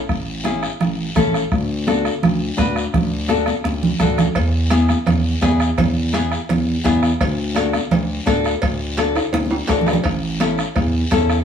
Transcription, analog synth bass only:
0.09 A1
0.80 A1
1.16 A1
1.51 D2
2.22 D2
2.59 D2
2.94 D2
3.65 D2
4.00 D2
4.35 E2
5.06 E2
5.42 E2
5.78 E2
6.49 E2
6.85 E2
7.21 D2
7.91 D2
8.27 D2
8.62 D2
9.33 D2
9.69 D2
10.05 A1
10.76 E2
11.12 E2

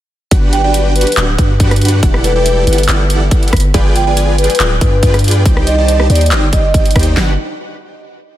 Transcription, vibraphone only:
0.53 G5
0.64 D5
0.96 B4
1.07 B4
2.24 B4
2.36 B4
3.96 G5
4.07 D5
4.38 B4
4.50 B4
4.81 B4
4.92 B4
5.67 D#5
5.78 D#5
6.10 D5
6.53 D#5
6.64 D#5

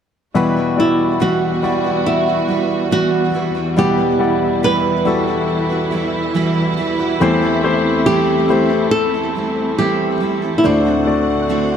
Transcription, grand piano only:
0.34 E2 B2 G3 E4 F#4 B4
0.77 G3 E4 F#4 D5
1.63 G3 E4 F#4 D5
3.77 E2 B2 G3 E4 D5 F#5
4.19 G3 E4 D5 F#5
5.05 G3 E4 F#4 A4
7.20 E2 E3 A3 E4 G4 C5
7.63 A3 E4 G4 C5
8.49 A3 E4 G4 C5
10.63 D2 A2 A3 D4 F#4 C5
11.06 A3 D4 F#4 D5

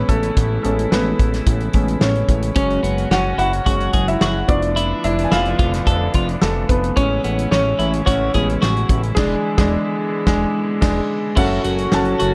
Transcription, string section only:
Already playing: C#3 E3 E4
2.54 G#2 F#3 C#4 F#4
4.47 D3 F3 A3 B3 D4
6.96 C#3 E3 G#3 C#4 E4
9.16 D3 G#3 B3
11.37 A2 C#3 F#3 C#4 F#4

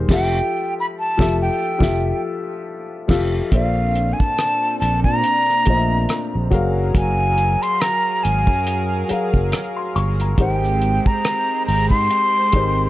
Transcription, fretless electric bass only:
0.09 F1
1.20 F1
1.81 F1
3.10 F1
3.53 A#1
4.82 A#1
5.05 A#2
5.68 A#1
6.35 A#1
6.52 F#1
6.95 F#1
8.25 G#1
8.48 F#2
9.11 muted fretless electric bass stroke
9.35 F#1
9.96 G1
10.39 G#1
11.68 G#1
11.91 G#2
12.54 G#1

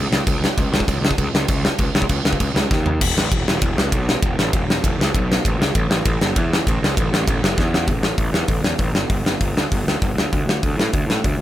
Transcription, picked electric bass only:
0.11 C#2
0.27 C#2
0.58 C#2
0.72 C#2
0.88 C#2
1.01 C#2
1.18 C#2
1.34 C#2
1.49 C#2
1.79 C#2
1.95 C#2
2.09 C#2
2.25 C#2
2.41 C#2
2.54 C#2
2.71 D#2
3.01 E1
3.15 A1
3.32 E1
3.46 E1
3.62 E1
3.77 C#2
3.93 B1
4.22 E1
4.38 A1
4.53 E1
4.66 E1
4.84 E1
4.98 C#2
5.15 B1
5.45 A1
5.59 C#2
5.75 A1
5.89 A1
6.05 A1
6.21 F#1
6.36 E2
6.67 A1
6.82 C#2
6.97 A1
7.12 A1
7.28 A1
7.42 F#1
7.58 E2
7.88 A1
8.01 A1
8.18 A1
8.32 E2
8.48 A1
8.61 E2
8.79 A1
8.93 G1
9.10 G1
9.24 G1
9.41 G1
9.53 D2
9.72 G1
9.85 D2
10.02 G1
10.14 D2
10.33 D2
10.46 D2
10.64 D2
10.77 A2
10.93 D2
11.06 A2
11.25 D2
11.38 D2

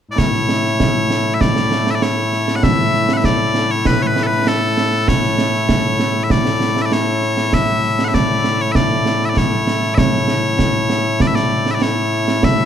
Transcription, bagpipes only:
0.11 A2 A3 E4 D5
0.18 C#5
1.34 E5
1.41 D5
1.91 E5
1.95 D5
2.02 C#5
2.56 F#5
2.63 E5
3.13 E5 F#5
3.25 D5
3.71 C#5
3.87 B4
4.03 C#5
4.07 B4
4.23 A4 B4
4.47 A4
5.08 C#5
6.24 E5
6.31 D5
6.82 D5 E5
6.93 C#5
7.54 E5
8.04 E5 F#5
8.14 D5
8.61 C#5
8.72 D5 E5
9.26 D5 E5
9.37 C#5
9.95 C#5 E5
11.21 D5
11.27 E5
11.35 D5
11.71 D5 E5
11.82 C#5
12.44 E5

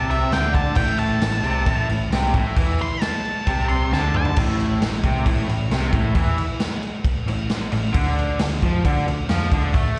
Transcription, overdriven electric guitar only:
Already playing: C3
0.34 D3
0.78 A2
1.23 A2
1.44 C3
1.67 A2
1.90 A2
2.13 C3
2.35 A2
2.58 E3
3.48 C3
3.93 D3
4.38 A2
4.82 A2
5.04 C3
5.26 A2
5.49 A2
5.72 C3
5.93 A2
6.16 E3
7.29 A2
7.73 A2
7.93 D3
8.40 D3
8.63 F3
8.85 D3
9.08 D3
9.29 F3
9.53 D3
9.74 A3

